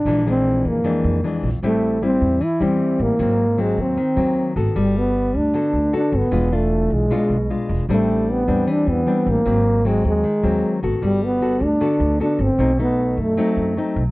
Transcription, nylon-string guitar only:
0.06 0.82 A#2 medium
0.06 0.22 E3 medium
0.06 0.23 G#3 soft
0.06 0.23 D4 medium
0.26 0.81 E3 medium
0.26 0.82 G#3 medium
0.26 0.82 D4 medium
0.84 1.61 F2 medium
0.84 1.20 E3 soft
0.84 1.20 G#3 medium
0.84 1.21 D4 medium
1.24 1.49 E3 soft
1.24 1.49 G#3 medium
1.24 1.49 D4 medium
1.63 2.39 A2 medium
1.63 1.99 G3 soft
1.63 1.99 C4 medium
1.63 1.99 E4 medium
2.02 2.41 G3 medium
2.02 2.41 C4 soft
2.02 2.41 E4 medium
2.41 3.17 E3 medium
2.60 3.16 G3 medium
2.60 3.16 C4 medium
2.60 3.16 E4 medium
3.19 3.95 G#2 medium
3.19 3.44 F#3 medium
3.19 3.44 A#3 soft
3.19 3.45 C4 medium
3.58 3.97 F#3 soft
3.58 3.97 A#3 soft
3.58 3.97 C4 medium
3.97 4.74 D#3 medium
4.16 4.53 F#3 medium
4.16 4.53 A#3 medium
4.16 4.53 C4 medium
4.56 5.12 B3 soft
4.56 5.12 F#4 medium
4.56 5.12 A4 medium
4.76 5.52 G3 medium
5.54 6.30 D3 medium
5.54 5.79 B3 soft
5.54 5.80 F#4 soft
5.54 5.80 A4 medium
5.93 6.29 B3 soft
5.93 6.29 F#4 soft
5.93 6.29 A4 medium
6.31 7.08 E3 medium
6.31 6.48 G#3 medium
6.31 6.48 D4 medium
6.31 6.49 F4 medium
6.52 7.08 D4 soft
6.52 7.08 F4 medium
7.10 7.87 B2 soft
7.10 7.36 G#3 medium
7.10 7.36 D4 soft
7.10 7.36 F4 medium
7.50 7.86 G#3 soft
7.50 7.86 D4 soft
7.50 7.86 F4 medium
7.89 8.66 A2 medium
7.89 8.45 G3 medium
7.89 8.45 C4 medium
7.89 8.45 D4 medium
8.47 9.03 G3 medium
8.47 9.03 C4 medium
8.47 9.04 D4 medium
8.67 9.44 E3 medium
9.06 9.42 G3 medium
9.06 9.43 C4 medium
9.06 9.43 D4 soft
9.45 10.22 G#2 medium
9.45 9.81 F#3 medium
9.45 9.82 A#3 medium
9.45 9.82 C4 soft
9.85 10.24 F#3 soft
9.85 10.24 A#3 soft
9.85 10.24 C4 medium
10.24 11.00 D#3 medium
10.43 10.79 F#3 medium
10.43 10.79 A#3 medium
10.43 10.80 C4 medium
10.83 11.40 B3 medium
10.83 11.41 F#4 medium
10.83 11.41 A4 medium
11.03 11.79 G3 soft
11.42 11.67 B3 soft
11.42 11.67 F#4 soft
11.42 11.67 A4 medium
11.81 12.57 D3 medium
11.81 12.17 B3 medium
11.81 12.17 F#4 soft
11.81 12.17 A4 medium
12.20 12.46 B3 soft
12.20 12.47 F#4 soft
12.20 12.47 A4 medium
12.59 13.35 B2 soft
12.59 12.71 A3 soft
12.59 12.71 C4 medium
12.59 12.71 D#4 medium
12.79 13.35 A3 medium
12.79 13.35 D#4 medium
13.37 14.11 F#3 medium
13.37 13.74 A3 medium
13.37 13.74 C4 medium
13.37 13.74 D#4 medium
13.77 14.02 A3 medium
13.77 14.02 C4 soft
13.77 14.02 D#4 medium

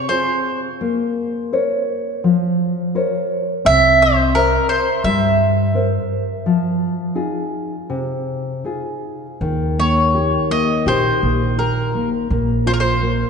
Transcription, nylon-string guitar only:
0.09 0.67 C4 soft
0.09 0.67 F4 soft
0.09 0.67 G#4 soft
0.81 1.51 A#3 medium
1.53 2.10 A#4 soft
1.53 2.10 C5 soft
1.53 2.10 C#5 medium
2.24 2.93 F3 medium
2.95 3.52 A#4 soft
2.95 3.52 C5 soft
2.95 3.52 C#5 soft
3.65 4.32 C4 medium
4.35 4.90 A#4 soft
4.35 4.90 C5 soft
4.35 4.90 E5 medium
5.05 5.73 G3 medium
5.75 6.31 A#4 soft
5.75 6.31 C5 soft
5.75 6.31 E5 soft
6.46 7.15 F3 medium
7.15 7.74 D#4 soft
7.15 7.74 F4 soft
7.15 7.74 G#4 soft
7.90 8.63 C3 medium
8.64 9.25 D#4 soft
8.64 9.26 F4 soft
8.64 9.26 G#4 soft
9.41 12.26 D#3 medium
9.79 10.14 A#3 soft
10.14 10.49 G4 soft
10.50 10.85 A#3 soft
10.87 11.21 G4 medium
11.22 11.57 A#3 soft
11.58 11.93 G4 soft
11.95 12.29 A#3 medium
12.31 13.01 A#3 medium
12.66 13.01 F4 soft
13.02 13.30 A#3 medium

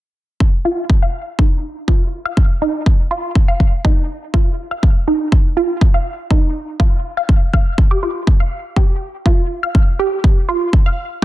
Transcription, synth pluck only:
0.65 0.71 F4 medium
1.02 1.08 F5 medium
1.39 1.45 D#4 medium
1.88 1.94 F4 medium
2.25 2.31 F5 medium
2.62 2.68 D#4 medium
3.11 3.17 F4 medium
3.48 3.54 F5 medium
3.85 3.91 D#4 medium
4.34 4.40 F4 medium
4.71 4.77 F5 medium
5.08 5.14 D#4 medium
5.57 5.63 F4 medium
5.94 6.00 F5 medium
6.30 6.36 D#4 medium
6.80 6.86 F4 medium
7.17 7.23 F5 medium
7.53 7.59 F5 medium
7.91 7.96 G4 medium
8.03 8.06 F4 medium
8.40 8.46 F5 medium
8.76 8.82 G4 medium
9.26 9.32 F4 medium
9.63 9.69 F5 medium
9.99 10.05 G4 medium
10.49 10.54 F4 medium
10.86 10.91 F5 medium

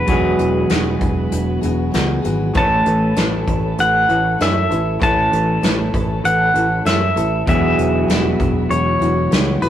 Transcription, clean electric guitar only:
0.06 2.52 E2 medium
0.06 2.53 B2 medium
0.06 2.53 F#3 medium
0.06 2.54 G#3 medium
0.06 2.54 B3 loud
0.10 2.54 G#4 medium
2.54 4.99 A2 medium
2.54 5.01 E3 medium
2.54 5.00 A3 medium
2.54 5.00 C#4 medium
2.58 5.01 A4 medium
5.00 7.45 A2 medium
5.00 7.46 E3 medium
5.00 7.46 A3 medium
5.00 7.46 C#4 medium
5.00 7.47 A4 medium
7.46 9.69 E2 medium
7.46 9.69 B2 medium
7.46 9.69 F#3 loud
7.46 9.69 G#3 medium
7.46 9.69 B3 loud
7.50 9.69 G#4 loud

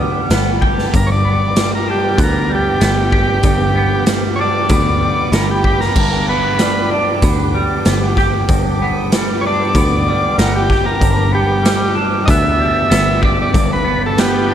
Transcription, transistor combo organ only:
0.96 1.10 A#4 loud
1.07 1.10 C#5 medium
1.12 1.71 D5 loud
1.75 1.88 A#4 medium
1.91 2.20 G4 medium
2.23 2.52 A#4 loud
2.55 2.83 G4 loud
2.84 4.05 G4 loud
4.36 4.39 C#5 medium
4.41 5.32 D5 loud
5.34 5.48 A#4 medium
5.51 5.81 G4 medium
5.81 6.26 A#4 loud
6.29 6.90 B4 loud
9.41 9.45 C#5 medium
9.46 10.37 D5 loud
10.39 10.53 A#4 medium
10.56 10.86 G4 loud
10.86 11.32 A#4 loud
11.35 11.95 G4 loud
12.26 12.29 D#5 medium
12.30 13.21 E5 loud
13.25 13.39 D5 medium
13.42 13.71 D5 medium
13.73 14.02 B4 loud
14.06 14.19 A4 medium
14.19 14.54 B3 loud
14.19 14.54 G4 loud

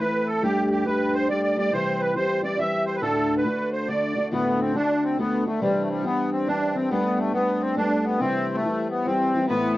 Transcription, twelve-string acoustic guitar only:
0.00 0.42 E3 medium
0.00 0.42 A3 soft
0.00 0.43 C4 medium
0.00 0.43 E4 medium
0.42 0.85 G3 medium
0.42 0.84 A3 medium
0.42 0.85 D4 medium
0.42 0.87 G4 medium
0.85 1.28 G3 medium
0.85 1.28 A3 soft
0.85 1.29 D4 medium
0.85 1.29 G4 medium
1.29 1.55 G3 medium
1.29 1.56 A3 medium
1.29 1.57 D4 medium
1.29 1.57 G4 medium
1.57 1.72 G3 medium
1.57 1.72 A3 medium
1.57 1.73 D4 soft
1.57 1.72 G4 medium
1.72 2.15 C3 medium
1.72 2.14 E3 medium
1.72 2.15 G3 medium
1.72 2.15 C4 medium
1.72 2.16 G4 medium
2.15 2.41 E3 medium
2.15 2.42 G3 medium
2.15 2.43 C4 soft
2.15 2.43 G4 medium
2.42 2.57 E3 soft
2.42 2.58 G3 medium
2.42 2.58 C4 medium
2.42 2.59 G4 medium
2.58 3.01 E3 soft
2.58 3.02 G3 medium
2.58 3.02 C4 medium
2.58 3.02 G4 medium
3.01 3.45 D2 medium
3.01 3.45 A2 medium
3.01 3.44 D3 medium
3.01 3.45 A3 medium
3.01 3.46 D4 medium
3.01 3.46 F#4 medium
3.45 3.88 D3 medium
3.45 3.88 A3 medium
3.45 3.89 D4 medium
3.45 3.89 F#4 medium
3.88 4.14 D3 medium
3.88 4.15 A3 soft
3.88 4.15 D4 medium
3.88 4.16 F#4 medium
4.15 4.31 D3 soft
4.15 4.31 A3 soft
4.15 4.31 D4 soft
4.15 4.32 F#4 soft
4.31 4.75 D2 medium
4.31 4.75 A2 medium
4.31 4.74 D3 medium
4.31 4.74 A3 medium
4.31 4.75 D4 medium
4.31 4.75 F#4 medium
4.74 5.17 D3 medium
4.74 5.17 A3 medium
4.74 5.19 D4 medium
4.74 5.19 F#4 medium
5.18 5.44 D3 medium
5.18 5.45 A3 medium
5.18 5.46 D4 medium
5.18 5.46 F#4 medium
5.45 5.61 D3 soft
5.45 5.61 A3 soft
5.45 5.61 D4 soft
5.45 5.62 F#4 medium
5.61 6.04 C3 medium
5.61 6.03 E3 medium
5.61 6.04 G3 medium
5.61 6.04 C4 medium
5.61 6.06 D4 medium
6.04 6.46 E3 medium
6.04 6.48 G3 medium
6.04 6.48 C4 medium
6.04 6.48 D4 medium
6.47 6.73 E3 medium
6.47 6.74 G3 medium
6.47 6.75 C4 medium
6.47 6.75 D4 medium
6.75 6.90 E3 soft
6.75 6.90 G3 soft
6.75 6.91 C4 medium
6.75 6.91 D4 medium
6.91 7.33 G3 medium
6.91 7.33 A3 medium
6.91 7.33 B3 medium
6.91 7.34 D4 medium
7.33 7.75 G3 medium
7.33 7.76 A3 medium
7.33 7.77 B3 medium
7.33 7.77 D4 medium
7.76 8.20 G3 medium
7.76 8.20 A3 medium
7.76 8.21 B3 medium
7.76 8.21 D4 medium
8.20 8.63 C3 medium
8.20 8.63 E3 medium
8.20 8.62 G3 medium
8.20 8.64 C4 medium
8.20 8.65 E4 medium
8.63 9.05 E3 medium
8.63 9.06 G3 medium
8.63 9.06 C4 medium
8.63 9.07 E4 medium
9.06 9.33 E3 soft
9.06 9.34 G3 medium
9.06 9.34 C4 medium
9.06 9.35 E4 medium
9.34 9.49 E3 soft
9.34 9.50 G3 medium
9.34 9.49 C4 medium
9.34 9.49 E4 medium
9.49 9.78 A2 medium
9.49 9.78 E3 medium
9.49 9.78 A3 medium
9.49 9.78 C4 medium
9.49 9.78 E4 medium

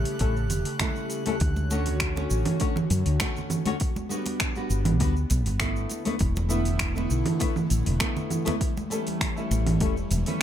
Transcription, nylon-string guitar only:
0.00 0.17 G3 medium
0.00 0.17 A3 medium
0.00 0.17 C#4 medium
0.00 0.18 E4 medium
0.00 0.18 A4 medium
0.20 0.34 G3 medium
0.20 0.34 A3 medium
0.20 0.34 C#4 medium
0.20 0.34 E4 medium
0.20 0.35 A4 loud
0.79 1.22 G3 medium
0.79 1.22 A3 medium
0.79 1.23 C#4 medium
0.79 1.23 E4 medium
0.79 1.23 A4 medium
1.26 1.34 G3 medium
1.26 1.34 A3 medium
1.26 1.34 C#4 medium
1.26 1.34 E4 medium
1.26 1.35 A4 loud
1.71 2.13 A3 medium
1.71 2.13 C#4 medium
1.71 2.13 D4 medium
1.71 2.13 F#4 medium
1.71 2.14 C#5 loud
2.16 2.57 A3 medium
2.16 2.57 C#4 medium
2.16 2.58 D4 medium
2.16 2.58 F#4 medium
2.16 2.58 C#5 medium
2.60 2.74 A3 medium
2.60 2.74 C#4 medium
2.60 2.74 D4 medium
2.60 2.75 F#4 medium
2.60 2.75 C#5 loud
3.19 3.62 A3 medium
3.19 3.62 C#4 medium
3.19 3.63 D4 medium
3.19 3.63 F#4 medium
3.19 3.63 C#5 medium
3.65 3.74 A3 medium
3.65 3.74 C#4 medium
3.65 3.74 D4 medium
3.65 3.74 F#4 medium
3.65 3.75 C#5 loud
4.09 4.52 G3 medium
4.09 4.52 B3 medium
4.09 4.53 D4 medium
4.09 4.53 F#4 medium
4.09 4.53 B4 loud
4.56 4.97 G3 medium
4.56 4.97 B3 medium
4.56 4.97 D4 medium
4.56 4.98 F#4 medium
4.56 4.98 B4 medium
5.00 5.14 G3 medium
5.00 5.14 B3 medium
5.00 5.14 D4 medium
5.00 5.14 F#4 medium
5.00 5.14 B4 loud
5.60 6.02 A3 medium
5.60 6.03 B3 medium
5.60 6.03 D4 medium
5.60 6.03 E4 medium
5.60 6.03 B4 medium
6.05 6.13 A3 loud
6.05 6.14 B3 medium
6.05 6.14 D4 medium
6.05 6.14 E4 medium
6.05 6.15 B4 loud
6.49 6.92 A3 medium
6.49 6.92 B3 medium
6.49 6.92 D4 medium
6.49 6.93 E4 medium
6.49 6.93 B4 loud
6.95 7.37 A3 medium
6.95 7.37 B3 medium
6.95 7.37 D4 medium
6.95 7.37 E4 medium
6.95 7.38 B4 medium
7.39 7.54 A3 medium
7.39 7.54 B3 medium
7.39 7.54 D4 medium
7.39 7.54 E4 medium
7.39 7.54 B4 medium
8.00 8.42 A3 medium
8.00 8.43 B3 medium
8.00 8.43 D4 medium
8.00 8.43 E4 medium
8.00 8.43 B4 medium
8.45 8.53 A3 loud
8.45 8.54 B3 medium
8.45 8.54 D4 medium
8.45 8.54 E4 medium
8.45 8.55 B4 loud
8.90 9.33 G3 medium
8.90 9.33 A3 medium
8.90 9.33 C#4 medium
8.90 9.33 E4 medium
8.90 9.33 A4 loud
9.36 9.77 G3 medium
9.36 9.77 A3 medium
9.36 9.78 C#4 medium
9.36 9.78 E4 medium
9.36 9.78 A4 medium
9.80 9.94 G3 medium
9.80 9.94 A3 medium
9.80 9.94 C#4 medium
9.80 9.95 E4 medium
9.80 9.95 A4 medium
10.26 10.43 G3 medium
10.26 10.43 A3 medium
10.26 10.43 C#4 medium
10.26 10.43 E4 medium
10.26 10.43 B4 medium

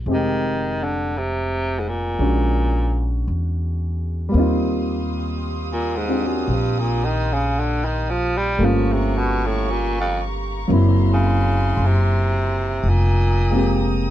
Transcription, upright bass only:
0.06 2.15 F1 medium
2.19 3.22 A#1 medium
3.28 4.30 E2 medium
4.34 6.43 D#2 medium
6.48 8.56 A#1 medium
8.59 10.67 G1 medium
10.70 11.73 F#1 medium
11.77 12.80 F#1 medium
12.83 14.10 F1 medium

